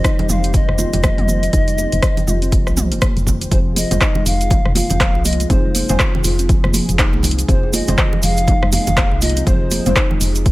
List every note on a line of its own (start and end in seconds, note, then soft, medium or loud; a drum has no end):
0.00 3.48 D#3 medium
0.00 3.48 G3 medium
0.00 3.48 C4 medium
0.00 3.48 G4 medium
0.00 3.48 C5 medium
0.00 0.31 D#5 loud
0.04 0.19 D#4 medium
0.04 kick loud
0.04 cross-stick loud
0.04 closed hi-hat medium
0.04 cabasa soft
0.19 0.28 G3 medium
0.19 closed hi-hat soft
0.19 muted conga soft
0.19 low conga loud
0.29 0.62 F1 medium
0.29 0.56 F5 loud
0.29 mid tom medium
0.29 cabasa medium
0.44 closed hi-hat soft
0.44 cabasa soft
0.54 3.02 D#5 loud
0.54 kick loud
0.54 closed hi-hat medium
0.54 muted conga medium
0.54 low conga medium
0.54 cabasa medium
0.69 0.85 F1 loud
0.69 0.78 C3 loud
0.69 cross-stick medium
0.78 0.93 F4 medium
0.78 high conga loud
0.78 low conga medium
0.78 cabasa medium
0.93 1.10 F1 medium
0.93 1.03 C4 medium
0.93 closed hi-hat soft
0.93 low conga loud
0.93 cabasa soft
1.03 1.17 F3 medium
1.03 kick loud
1.03 cross-stick loud
1.03 closed hi-hat medium
1.03 muted conga soft
1.03 high conga loud
1.03 cabasa soft
1.18 1.49 F1 medium
1.18 closed hi-hat soft
1.18 mid tom medium
1.28 1.36 F3 medium
1.28 high conga medium
1.28 cabasa medium
1.43 closed hi-hat soft
1.43 muted conga soft
1.43 cabasa soft
1.53 1.86 F1 loud
1.53 1.67 D#4 medium
1.53 kick loud
1.53 closed hi-hat medium
1.53 cabasa medium
1.68 1.77 G3 medium
1.68 closed hi-hat soft
1.68 cabasa soft
1.78 muted conga medium
1.78 high conga medium
1.78 cabasa medium
1.92 2.00 F1 loud
1.92 closed hi-hat soft
1.92 cabasa soft
2.02 kick loud
2.02 cross-stick loud
2.02 closed hi-hat medium
2.02 cabasa soft
2.17 2.27 C3 loud
2.17 closed hi-hat soft
2.17 muted conga soft
2.17 low conga loud
2.17 cabasa soft
2.27 2.69 F1 medium
2.27 2.42 F4 medium
2.27 mid tom medium
2.27 cabasa medium
2.42 2.52 C4 medium
2.42 closed hi-hat soft
2.42 cabasa soft
2.52 2.66 F3 medium
2.52 kick loud
2.52 closed hi-hat medium
2.52 muted conga soft
2.52 cabasa soft
2.67 2.93 C2 medium
2.67 cross-stick medium
2.67 high conga medium
2.67 cabasa soft
2.77 mid tom medium
2.77 high conga loud
2.77 cabasa loud
2.92 3.08 F1 medium
2.92 3.01 A#3 medium
2.92 closed hi-hat soft
2.92 cabasa soft
3.02 3.10 A#3 loud
3.02 kick loud
3.02 cross-stick loud
3.02 closed hi-hat medium
3.02 muted conga soft
3.02 high conga medium
3.02 cabasa soft
3.17 3.47 F1 loud
3.17 closed hi-hat soft
3.17 high conga medium
3.17 cabasa soft
3.27 kick medium
3.27 high conga medium
3.27 low conga medium
3.27 cabasa medium
3.41 closed hi-hat soft
3.41 muted conga soft
3.41 cabasa soft
3.51 3.84 F1 loud
3.51 10.52 C3 medium
3.51 10.52 F3 medium
3.51 3.65 F3 medium
3.51 10.52 G#3 medium
3.51 3.88 C4 medium
3.51 7.44 F4 medium
3.51 3.88 F4 medium
3.51 10.52 G#4 medium
3.51 3.88 G#4 medium
3.51 3.88 C5 medium
3.51 3.58 C5 medium
3.51 kick loud
3.51 closed hi-hat medium
3.51 cabasa soft
3.76 3.84 F3 medium
3.76 4.28 D#5 loud
3.76 open hi-hat medium
3.76 muted conga medium
3.76 high conga loud
3.76 cabasa loud
3.91 3.98 F1 loud
3.91 5.47 C4 medium
3.91 5.47 F4 medium
3.91 5.47 G#4 medium
3.91 5.47 C5 medium
3.91 closed hi-hat soft
3.91 mid tom medium
3.91 cabasa medium
4.01 4.15 D#4 medium
4.01 kick loud
4.01 cross-stick loud
4.01 clap loud
4.01 muted conga soft
4.01 cabasa soft
4.15 4.25 G#3 medium
4.15 low conga loud
4.26 4.59 F1 medium
4.26 4.75 F5 loud
4.26 open hi-hat medium
4.26 muted conga medium
4.26 cabasa loud
4.41 closed hi-hat soft
4.41 cabasa soft
4.50 kick loud
4.50 closed hi-hat medium
4.50 mid tom medium
4.50 muted conga soft
4.50 low conga loud
4.50 cabasa soft
4.65 4.82 F1 loud
4.65 4.75 C3 loud
4.65 cross-stick medium
4.75 4.90 F4 medium
4.75 5.27 F5 loud
4.75 open hi-hat medium
4.75 high conga loud
4.75 low conga medium
4.75 cabasa medium
4.90 5.17 F1 medium
4.90 5.00 C4 medium
4.90 closed hi-hat soft
4.90 muted conga medium
4.90 low conga loud
4.90 cabasa medium
5.00 5.14 F3 medium
5.00 kick loud
5.00 cross-stick loud
5.00 clap loud
5.00 closed hi-hat medium
5.00 high conga loud
5.00 cabasa soft
5.15 5.45 C2 loud
5.15 muted conga soft
5.25 5.33 F3 medium
5.25 5.52 D#5 loud
5.25 open hi-hat medium
5.25 high conga loud
5.25 cabasa loud
5.33 closed hi-hat medium
5.40 closed hi-hat soft
5.40 muted conga medium
5.40 cabasa medium
5.50 5.83 F1 loud
5.50 5.86 C4 medium
5.50 5.64 D#4 medium
5.50 5.86 F4 medium
5.50 5.86 G#4 medium
5.50 5.86 C5 medium
5.50 6.25 C5 medium
5.50 kick loud
5.50 closed hi-hat medium
5.50 mid tom medium
5.50 cabasa soft
5.65 5.74 G#3 medium
5.75 open hi-hat loud
5.75 muted conga medium
5.75 high conga loud
5.75 cabasa loud
5.89 5.97 F1 loud
5.89 7.46 C4 loud
5.89 7.46 F4 medium
5.89 7.46 G#4 loud
5.89 7.46 C5 loud
5.89 closed hi-hat soft
5.89 mid tom medium
5.89 cabasa medium
5.99 kick loud
5.99 cross-stick loud
5.99 clap loud
5.99 muted conga soft
5.99 cabasa soft
6.14 6.24 C3 loud
6.14 low conga loud
6.24 6.57 F1 medium
6.24 6.38 F4 medium
6.24 open hi-hat medium
6.24 muted conga medium
6.24 cabasa medium
6.39 6.49 C4 medium
6.39 closed hi-hat soft
6.39 cabasa medium
6.49 6.63 F3 medium
6.49 kick loud
6.49 closed hi-hat medium
6.49 muted conga soft
6.49 cabasa soft
6.64 6.80 F1 loud
6.64 cross-stick medium
6.64 high conga medium
6.74 6.82 F3 medium
6.74 open hi-hat medium
6.74 high conga loud
6.74 cabasa loud
6.89 7.15 F1 medium
6.89 closed hi-hat soft
6.89 muted conga medium
6.89 cabasa medium
6.99 7.13 D#4 medium
6.99 kick loud
6.99 cross-stick loud
6.99 clap medium
6.99 closed hi-hat medium
6.99 high conga loud
6.99 cabasa soft
7.13 7.44 C2 loud
7.13 7.23 G#3 medium
7.13 muted conga soft
7.13 high conga medium
7.23 open hi-hat medium
7.23 high conga loud
7.23 low conga loud
7.23 cabasa medium
7.31 closed hi-hat medium
7.38 closed hi-hat soft
7.38 muted conga soft
7.38 cabasa medium
7.48 7.81 F1 loud
7.48 7.84 C4 medium
7.48 10.52 D#4 medium
7.48 7.84 F4 medium
7.48 7.84 G#4 medium
7.48 7.75 C5 loud
7.48 7.84 C5 medium
7.48 kick loud
7.48 closed hi-hat medium
7.48 cabasa soft
7.63 7.72 C3 loud
7.73 7.87 F4 medium
7.73 8.24 D#5 loud
7.73 open hi-hat medium
7.73 muted conga medium
7.73 high conga loud
7.73 cabasa loud
7.87 7.95 F1 loud
7.87 7.97 C4 medium
7.87 9.44 C4 medium
7.87 9.44 F4 medium
7.87 9.44 G#4 medium
7.87 9.44 C5 medium
7.87 closed hi-hat soft
7.87 mid tom medium
7.87 cabasa medium
7.98 8.11 F3 medium
7.98 kick loud
7.98 cross-stick loud
7.98 clap medium
7.98 muted conga soft
7.98 cabasa soft
8.13 low conga loud
8.23 8.55 F1 medium
8.23 8.31 F3 medium
8.23 8.72 F5 loud
8.23 open hi-hat medium
8.23 muted conga soft
8.23 cabasa medium
8.37 closed hi-hat soft
8.37 cabasa medium
8.47 8.62 D#4 medium
8.47 kick loud
8.47 closed hi-hat medium
8.47 mid tom medium
8.47 muted conga soft
8.47 low conga loud
8.47 cabasa soft
8.62 8.78 F1 loud
8.62 8.71 G#3 medium
8.62 cross-stick medium
8.72 9.23 F5 loud
8.72 open hi-hat medium
8.72 high conga loud
8.72 low conga medium
8.72 cabasa loud
8.87 9.13 F1 medium
8.87 closed hi-hat soft
8.87 muted conga soft
8.87 low conga loud
8.87 cabasa medium
8.97 kick loud
8.97 cross-stick loud
8.97 clap loud
8.97 closed hi-hat medium
8.97 high conga loud
8.97 cabasa soft
9.12 9.42 C2 loud
9.12 9.21 C3 loud
9.12 muted conga soft
9.22 9.36 F4 medium
9.22 9.47 D#5 loud
9.22 open hi-hat medium
9.22 high conga medium
9.22 cabasa medium
9.29 closed hi-hat medium
9.37 9.46 C4 medium
9.37 closed hi-hat soft
9.37 muted conga medium
9.37 cabasa soft
9.47 9.79 F1 loud
9.47 9.60 F3 medium
9.47 9.83 C4 medium
9.47 9.83 F4 medium
9.47 9.83 G#4 medium
9.47 9.83 C5 medium
9.47 10.17 C5 medium
9.47 kick loud
9.47 closed hi-hat medium
9.47 mid tom medium
9.47 cabasa soft
9.71 9.79 F3 medium
9.71 open hi-hat medium
9.71 muted conga medium
9.71 high conga loud
9.71 cabasa loud
9.86 9.93 F1 loud
9.86 10.52 C4 loud
9.86 10.52 F4 medium
9.86 10.52 G#4 medium
9.86 10.52 C5 loud
9.86 closed hi-hat soft
9.86 mid tom medium
9.86 cabasa medium
9.96 10.10 D#4 medium
9.96 kick loud
9.96 cross-stick loud
9.96 clap loud
9.96 closed hi-hat soft
9.96 muted conga soft
9.96 cabasa soft
10.11 10.20 G#3 medium
10.11 low conga loud
10.21 10.52 F1 medium
10.21 open hi-hat medium
10.21 muted conga soft
10.21 cabasa loud
10.35 closed hi-hat soft
10.35 cabasa medium
10.46 kick loud
10.46 closed hi-hat medium
10.46 muted conga soft
10.46 cabasa soft